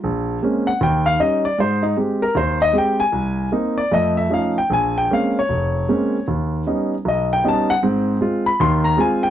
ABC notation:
X:1
M:4/4
L:1/8
Q:"Swing" 1/4=154
K:Ab
V:1 name="Grand piano"
z3 _g =g f e =d | c E z B c e g a- | a2 z =d e =e f g | a g f d4- d |
z4 e g =a _g | z3 =b c' _b a g |]
V:2 name="Grand piano"
B,,,2 [A,B,CD] z E,,2 [G,DE] z | A,,2 [A,CG] z E,,2 [A,CG] z | C,,2 [B,CE] z [F,,=A,]2 [F,A,DE] z | B,,,2 [A,B,CD] z F,,,2 [A,B,CD] z |
E,,2 [G,=B,DE] z =B,,,2 [G,B,DE] z | [A,,C]2 [A,CF] z [E,,E,]2 [A,CF] z |]